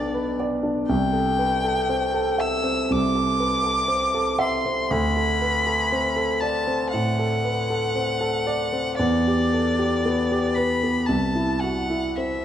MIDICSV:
0, 0, Header, 1, 3, 480
1, 0, Start_track
1, 0, Tempo, 1005025
1, 421, Time_signature, 4, 2, 24, 8
1, 3789, Tempo, 1048951
1, 5229, Tempo, 1109057
1, 5821, End_track
2, 0, Start_track
2, 0, Title_t, "Violin"
2, 0, Program_c, 0, 40
2, 0, Note_on_c, 0, 74, 83
2, 183, Note_off_c, 0, 74, 0
2, 420, Note_on_c, 0, 79, 90
2, 1146, Note_on_c, 0, 88, 96
2, 1153, Note_off_c, 0, 79, 0
2, 1392, Note_on_c, 0, 86, 101
2, 1400, Note_off_c, 0, 88, 0
2, 2102, Note_off_c, 0, 86, 0
2, 2105, Note_on_c, 0, 84, 77
2, 2344, Note_on_c, 0, 83, 92
2, 2351, Note_off_c, 0, 84, 0
2, 3057, Note_on_c, 0, 81, 86
2, 3064, Note_off_c, 0, 83, 0
2, 3292, Note_off_c, 0, 81, 0
2, 3295, Note_on_c, 0, 78, 90
2, 4248, Note_off_c, 0, 78, 0
2, 4264, Note_on_c, 0, 74, 86
2, 4985, Note_on_c, 0, 83, 82
2, 4992, Note_off_c, 0, 74, 0
2, 5220, Note_on_c, 0, 81, 74
2, 5227, Note_off_c, 0, 83, 0
2, 5456, Note_on_c, 0, 78, 81
2, 5462, Note_off_c, 0, 81, 0
2, 5697, Note_on_c, 0, 76, 63
2, 5704, Note_off_c, 0, 78, 0
2, 5821, Note_off_c, 0, 76, 0
2, 5821, End_track
3, 0, Start_track
3, 0, Title_t, "Grand piano"
3, 0, Program_c, 1, 0
3, 0, Control_c, 1, 64, 127
3, 0, Note_on_c, 1, 35, 48
3, 0, Note_on_c, 1, 62, 52
3, 0, Note_on_c, 1, 71, 44
3, 0, Note_on_c, 1, 72, 39
3, 0, Note_on_c, 1, 74, 49
3, 68, Note_off_c, 1, 71, 0
3, 68, Note_on_c, 1, 71, 48
3, 136, Note_off_c, 1, 62, 0
3, 189, Note_off_c, 1, 74, 0
3, 189, Note_on_c, 1, 74, 55
3, 255, Note_off_c, 1, 71, 0
3, 301, Note_on_c, 1, 62, 47
3, 376, Note_off_c, 1, 74, 0
3, 402, Note_off_c, 1, 35, 0
3, 421, Note_off_c, 1, 62, 0
3, 425, Note_on_c, 1, 36, 60
3, 430, Control_c, 1, 64, 0
3, 433, Note_off_c, 1, 72, 0
3, 503, Control_c, 1, 64, 127
3, 540, Note_on_c, 1, 69, 48
3, 661, Note_on_c, 1, 71, 43
3, 734, Note_off_c, 1, 69, 0
3, 782, Note_off_c, 1, 71, 0
3, 785, Note_on_c, 1, 69, 51
3, 903, Note_on_c, 1, 60, 51
3, 977, Note_off_c, 1, 69, 0
3, 1023, Note_on_c, 1, 69, 56
3, 1096, Note_off_c, 1, 60, 0
3, 1139, Note_on_c, 1, 76, 44
3, 1216, Note_off_c, 1, 69, 0
3, 1260, Note_on_c, 1, 60, 40
3, 1333, Note_off_c, 1, 76, 0
3, 1367, Note_off_c, 1, 36, 0
3, 1386, Note_on_c, 1, 36, 51
3, 1453, Note_off_c, 1, 60, 0
3, 1505, Note_on_c, 1, 69, 43
3, 1622, Note_on_c, 1, 71, 43
3, 1694, Note_off_c, 1, 69, 0
3, 1736, Note_on_c, 1, 69, 46
3, 1741, Note_off_c, 1, 71, 0
3, 1853, Note_on_c, 1, 60, 47
3, 1930, Note_off_c, 1, 69, 0
3, 1979, Note_on_c, 1, 69, 51
3, 2050, Note_off_c, 1, 60, 0
3, 2095, Note_on_c, 1, 76, 58
3, 2176, Note_off_c, 1, 69, 0
3, 2224, Note_on_c, 1, 60, 47
3, 2295, Note_off_c, 1, 76, 0
3, 2330, Note_off_c, 1, 36, 0
3, 2343, Note_on_c, 1, 38, 67
3, 2347, Note_off_c, 1, 60, 0
3, 2355, Control_c, 1, 64, 0
3, 2426, Control_c, 1, 64, 127
3, 2468, Note_on_c, 1, 69, 48
3, 2586, Note_on_c, 1, 71, 45
3, 2660, Note_off_c, 1, 69, 0
3, 2705, Note_on_c, 1, 69, 49
3, 2707, Note_off_c, 1, 71, 0
3, 2828, Note_on_c, 1, 60, 50
3, 2895, Note_off_c, 1, 69, 0
3, 2944, Note_on_c, 1, 69, 51
3, 3016, Note_off_c, 1, 60, 0
3, 3066, Note_on_c, 1, 74, 47
3, 3133, Note_off_c, 1, 69, 0
3, 3187, Note_on_c, 1, 60, 46
3, 3255, Note_off_c, 1, 74, 0
3, 3279, Note_off_c, 1, 38, 0
3, 3313, Note_on_c, 1, 45, 42
3, 3377, Note_off_c, 1, 60, 0
3, 3434, Note_on_c, 1, 69, 51
3, 3502, Note_off_c, 1, 45, 0
3, 3556, Note_on_c, 1, 71, 42
3, 3624, Note_off_c, 1, 69, 0
3, 3673, Note_off_c, 1, 71, 0
3, 3677, Note_on_c, 1, 69, 49
3, 3799, Note_on_c, 1, 60, 49
3, 3865, Note_off_c, 1, 69, 0
3, 3914, Note_on_c, 1, 69, 51
3, 3983, Note_off_c, 1, 60, 0
3, 4033, Note_on_c, 1, 74, 57
3, 4102, Note_off_c, 1, 69, 0
3, 4152, Note_on_c, 1, 60, 47
3, 4223, Note_off_c, 1, 74, 0
3, 4272, Note_off_c, 1, 60, 0
3, 4272, Note_on_c, 1, 40, 61
3, 4275, Control_c, 1, 64, 0
3, 4362, Control_c, 1, 64, 127
3, 4402, Note_on_c, 1, 67, 47
3, 4520, Note_on_c, 1, 69, 41
3, 4592, Note_off_c, 1, 67, 0
3, 4638, Note_off_c, 1, 69, 0
3, 4638, Note_on_c, 1, 67, 51
3, 4760, Note_on_c, 1, 59, 50
3, 4826, Note_off_c, 1, 67, 0
3, 4880, Note_on_c, 1, 67, 54
3, 4946, Note_off_c, 1, 59, 0
3, 4997, Note_on_c, 1, 71, 51
3, 5065, Note_off_c, 1, 67, 0
3, 5115, Note_on_c, 1, 59, 42
3, 5184, Note_off_c, 1, 71, 0
3, 5213, Note_off_c, 1, 40, 0
3, 5231, Note_on_c, 1, 36, 50
3, 5233, Note_off_c, 1, 59, 0
3, 5236, Control_c, 1, 64, 0
3, 5317, Control_c, 1, 64, 127
3, 5347, Note_on_c, 1, 64, 42
3, 5469, Note_on_c, 1, 66, 39
3, 5535, Note_off_c, 1, 64, 0
3, 5584, Note_on_c, 1, 64, 45
3, 5586, Note_off_c, 1, 66, 0
3, 5703, Note_on_c, 1, 60, 50
3, 5780, Note_off_c, 1, 64, 0
3, 5821, Note_off_c, 1, 36, 0
3, 5821, Note_off_c, 1, 60, 0
3, 5821, End_track
0, 0, End_of_file